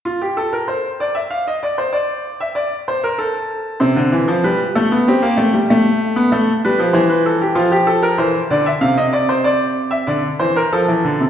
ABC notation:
X:1
M:3/4
L:1/16
Q:1/4=96
K:F
V:1 name="Grand piano"
F G A B c2 d e f _e d c | d3 e d2 c B A4 | c4 =B2 A2 G4- | G4 A2 =B2 c B A G |
F G A B c2 d e f _e d c | d3 e d2 c B A4 |]
V:2 name="Grand piano" clef=bass
z12 | z12 | C, D, E, F, G,2 A, =B, C _B, A, G, | A,3 =B, A,2 G, F, E,4 |
F,4 E,2 D,2 C,4- | C,4 D,2 E,2 F, E, D, C, |]